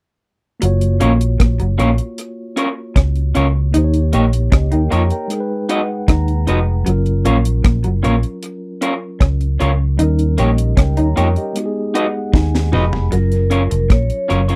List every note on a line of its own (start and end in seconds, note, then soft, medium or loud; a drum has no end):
0.60 0.99 F#1 loud
0.60 0.85 F#3 medium
0.60 3.69 A#3 medium
0.60 3.70 F4 medium
0.60 closed hi-hat medium
0.64 3.71 F#4 medium
0.64 3.72 C#5 medium
0.81 closed hi-hat soft
1.00 1.38 A#1 medium
1.00 1.24 A#3 medium
1.00 1.11 C#4 medium
1.00 1.11 F4 medium
1.00 1.12 A#4 medium
1.00 1.12 C#5 medium
1.00 closed hi-hat medium
1.21 closed hi-hat medium
1.40 1.59 A#1 medium
1.40 1.52 A#3 medium
1.40 kick loud
1.40 cross-stick loud
1.40 closed hi-hat medium
1.60 1.78 F#1 medium
1.60 1.71 F#3 medium
1.60 closed hi-hat medium
1.78 1.98 A#1 medium
1.78 1.91 A#3 medium
1.78 1.89 C#4 medium
1.78 1.89 F4 medium
1.78 1.90 A#4 medium
1.78 1.90 C#5 loud
1.78 closed hi-hat medium
1.98 closed hi-hat medium
2.18 closed hi-hat medium
2.56 2.67 C#4 medium
2.56 2.68 F4 medium
2.56 2.68 A#4 medium
2.56 2.68 C#5 medium
2.56 closed hi-hat medium
2.96 3.33 C#2 medium
2.96 3.19 C#4 medium
2.96 kick loud
2.96 cross-stick loud
2.96 closed hi-hat medium
3.16 closed hi-hat soft
3.35 3.73 C#2 medium
3.35 3.58 C#4 medium
3.35 3.45 C#4 medium
3.35 3.46 F4 medium
3.35 3.46 A#4 medium
3.35 3.46 C#5 medium
3.35 closed hi-hat medium
3.72 4.12 D#2 loud
3.72 5.26 A#3 medium
3.72 5.27 D#4 medium
3.72 3.97 D#4 medium
3.72 4.51 G4 medium
3.72 closed hi-hat medium
3.78 3.83 C5 medium
3.84 4.56 C#5 medium
3.94 closed hi-hat soft
4.13 4.51 A#1 medium
4.13 4.24 A#3 medium
4.13 4.36 A#3 medium
4.13 4.24 D#4 medium
4.13 4.24 G4 medium
4.13 4.24 C#5 medium
4.13 closed hi-hat medium
4.33 closed hi-hat medium
4.52 4.71 C#2 loud
4.52 4.64 C#4 medium
4.52 4.72 G4 medium
4.52 kick loud
4.52 cross-stick loud
4.52 closed hi-hat medium
4.72 4.91 D#2 medium
4.72 4.83 D#4 medium
4.72 4.91 A#4 medium
4.72 4.90 G5 medium
4.72 closed hi-hat medium
4.91 5.11 F2 medium
4.91 5.01 A#3 medium
4.91 5.02 D#4 medium
4.91 5.03 F4 medium
4.91 5.02 G4 medium
4.91 5.11 C#5 medium
4.91 5.02 C#5 medium
4.91 5.10 A#5 medium
4.91 closed hi-hat medium
5.10 5.33 A#4 medium
5.10 5.49 G5 medium
5.10 closed hi-hat soft
5.28 6.82 G#3 medium
5.28 6.83 D#4 medium
5.28 closed hi-hat medium
5.32 6.84 G#4 medium
5.32 5.39 A#4 medium
5.40 6.89 B4 medium
5.69 5.80 D#4 medium
5.69 5.80 F#4 medium
5.69 5.80 B4 medium
5.69 5.81 D#5 medium
5.69 6.06 F#5 medium
5.69 closed hi-hat medium
6.08 6.45 D#2 medium
6.08 6.32 D#4 medium
6.08 6.83 A#5 medium
6.08 kick loud
6.08 cross-stick loud
6.08 closed hi-hat medium
6.28 closed hi-hat soft
6.47 6.85 F1 medium
6.47 6.71 F3 medium
6.47 6.58 D#4 medium
6.47 6.58 F#4 medium
6.47 6.59 B4 loud
6.47 6.59 D#5 medium
6.47 closed hi-hat medium
6.84 7.24 F#1 loud
6.84 9.94 F#3 medium
6.84 7.10 F#3 medium
6.84 9.95 C#4 medium
6.84 closed hi-hat medium
6.88 9.96 F4 medium
6.88 9.97 A#4 medium
7.06 closed hi-hat soft
7.25 7.63 A#1 medium
7.25 7.49 A#3 medium
7.25 7.36 C#4 medium
7.25 7.36 F4 medium
7.25 7.36 A#4 medium
7.25 7.37 C#5 loud
7.25 closed hi-hat medium
7.45 closed hi-hat medium
7.64 7.84 A#1 loud
7.64 7.76 A#3 medium
7.64 kick loud
7.64 cross-stick loud
7.64 closed hi-hat medium
7.84 8.03 F#1 medium
7.84 7.96 F#3 medium
7.84 closed hi-hat medium
8.03 8.23 A#1 medium
8.03 8.15 A#3 medium
8.03 8.14 C#4 medium
8.03 8.14 F4 medium
8.03 8.15 A#4 medium
8.03 8.15 C#5 medium
8.03 closed hi-hat medium
8.23 closed hi-hat soft
8.43 closed hi-hat medium
8.81 8.92 C#4 medium
8.81 8.93 F4 medium
8.81 8.93 A#4 loud
8.81 8.93 C#5 medium
8.81 closed hi-hat medium
9.20 9.58 C#2 medium
9.20 9.44 C#4 medium
9.20 kick loud
9.20 cross-stick loud
9.20 closed hi-hat medium
9.41 closed hi-hat soft
9.60 9.98 C#2 medium
9.60 9.83 C#4 medium
9.60 9.70 C#4 medium
9.60 9.71 F4 medium
9.60 9.71 A#4 medium
9.60 9.71 C#5 medium
9.60 closed hi-hat medium
9.97 10.36 D#2 loud
9.97 11.51 G3 medium
9.97 11.52 C#4 medium
9.97 10.22 D#4 medium
9.97 11.53 D#4 medium
9.97 closed hi-hat medium
10.03 10.39 A#4 medium
10.19 closed hi-hat soft
10.38 10.76 A#1 medium
10.38 10.49 A#3 medium
10.38 10.61 A#3 medium
10.38 10.49 D#4 medium
10.38 10.49 G4 medium
10.38 10.76 G4 medium
10.38 10.49 C#5 medium
10.38 10.75 D#5 medium
10.38 closed hi-hat medium
10.58 closed hi-hat medium
10.77 10.96 C#2 medium
10.77 10.89 C#4 medium
10.77 10.97 A#4 medium
10.77 10.97 G5 medium
10.77 kick loud
10.77 cross-stick loud
10.77 closed hi-hat medium
10.97 11.16 D#2 medium
10.97 11.09 D#4 medium
10.97 11.16 C#5 medium
10.97 11.16 A#5 medium
10.97 closed hi-hat medium
11.16 11.36 F2 medium
11.16 11.27 A#3 medium
11.16 11.27 D#4 medium
11.16 11.28 F4 medium
11.16 11.27 G4 medium
11.16 11.36 A#4 medium
11.16 11.28 C#5 medium
11.16 11.36 G5 medium
11.16 closed hi-hat medium
11.36 11.74 G4 medium
11.36 11.74 D#5 medium
11.36 closed hi-hat soft
11.53 13.08 G#3 medium
11.53 13.09 B3 medium
11.53 13.10 D#4 medium
11.53 closed hi-hat medium
11.59 11.64 F#4 medium
11.66 13.14 G#4 medium
11.94 12.05 D#4 medium
11.94 12.05 F#4 medium
11.94 12.06 B4 medium
11.94 12.06 D#5 medium
11.94 12.31 F#5 medium
11.94 closed hi-hat medium
12.34 12.71 D#2 medium
12.34 12.57 D#4 medium
12.34 12.70 G#5 medium
12.34 kick loud
12.34 snare medium
12.55 snare medium
12.72 13.10 F1 medium
12.72 12.96 F3 medium
12.72 12.83 D#4 medium
12.72 12.83 F#4 medium
12.72 12.84 B4 medium
12.72 12.84 D#5 medium
12.72 13.09 B5 medium
12.72 mid tom medium
12.93 floor tom medium
13.10 13.68 F#1 medium
13.10 14.56 F#3 medium
13.10 13.35 F#3 medium
13.10 14.56 C#4 medium
13.10 14.56 F4 medium
13.10 13.93 A#4 medium
13.10 closed hi-hat medium
13.16 14.56 A#4 medium
13.32 closed hi-hat soft
13.50 13.61 C#4 medium
13.50 13.62 F4 medium
13.50 13.62 A#4 medium
13.50 13.62 C#5 medium
13.50 closed hi-hat medium
13.71 13.89 F1 medium
13.71 13.82 F3 medium
13.71 closed hi-hat medium
13.90 14.09 A#1 medium
13.90 14.02 A#3 medium
13.90 14.56 C#5 medium
13.90 kick loud
13.90 cross-stick loud
13.90 closed hi-hat medium
14.10 closed hi-hat medium
14.28 14.56 F#1 medium
14.28 14.53 F#3 medium
14.28 14.39 C#4 medium
14.28 14.40 F4 medium
14.28 14.40 A#4 medium
14.28 14.40 C#5 medium
14.28 closed hi-hat medium
14.48 14.56 C#4 medium
14.48 14.56 F4 medium
14.48 14.56 A#4 medium
14.48 14.56 C#5 medium
14.48 closed hi-hat medium